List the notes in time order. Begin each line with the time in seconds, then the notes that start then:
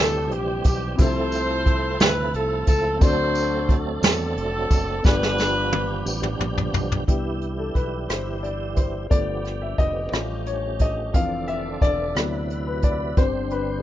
Already playing: C3 E3 G3 C4 E4 G4 E5 B5
0.00 D2 A4
0.31 A#1 G4, closed hi-hat
0.64 B1 G4, kick, closed hi-hat, tambourine
0.96 C2 C3 F3 A3 C4 E4 A4, kick, closed hi-hat, tambourine
1.00 E4 A4 C5 E5
1.32 closed hi-hat, tambourine
1.66 kick, closed hi-hat
2.00 D2 B4, snare, closed hi-hat, tambourine
2.34 C2 A4, closed hi-hat
2.67 C#2 A4, kick, closed hi-hat, tambourine
2.99 D2 D3 F#3 A3 C4 D4 F#4 A4 C5, kick, closed hi-hat, tambourine
3.03 F#4 A4 D5
3.35 closed hi-hat, tambourine
3.69 kick, closed hi-hat
4.02 E2 C4 F#4 A4, snare, closed hi-hat, tambourine
4.36 F1, closed hi-hat
4.70 F#1, kick, closed hi-hat, tambourine
5.02 G1 G2 F3 G3 B3 D4 F4 G4 B4, kick, tambourine
5.06 D4 F4 G4 D5, snare
5.23 snare
5.38 snare, tambourine
5.73 high tom
6.06 A1, tambourine
6.23 mid tom
6.39 A#1, mid tom
6.58 floor tom
6.73 B1, floor tom, tambourine
6.92 floor tom
7.07 C2 E3 G3 B3 D4 E4 G4, kick, closed hi-hat
7.42 closed hi-hat
7.59 A4
7.75 B1 B4, kick, closed hi-hat
8.09 G1 C5, cross-stick, closed hi-hat
8.43 D5, closed hi-hat
8.76 C5, kick, closed hi-hat
9.10 G1 D3 F3 A3 B3 F4 G4 D5, kick, closed hi-hat
9.45 cross-stick, closed hi-hat
9.62 E5
9.78 F1 D#5, kick, closed hi-hat
10.12 A1 F3 G3 A3 C4 C#4 F4 G4, cross-stick, closed hi-hat
10.19 C#4
10.46 C#5, closed hi-hat
10.79 D#5, kick, closed hi-hat
11.13 F1 D3 E3 F3 C4 D4 A4 F5, kick, closed hi-hat
11.48 E5, closed hi-hat
11.82 E1 D5, kick, cross-stick, closed hi-hat
12.14 D2 C3 F#3 B3 C4 E4 B4, cross-stick, closed hi-hat
12.50 closed hi-hat
12.67 B4
12.82 D5, kick, closed hi-hat
13.17 G1 D3 G3 C4 D4 B4 C5, kick, closed hi-hat
13.24 C5
13.51 B4, closed hi-hat
13.78 G#4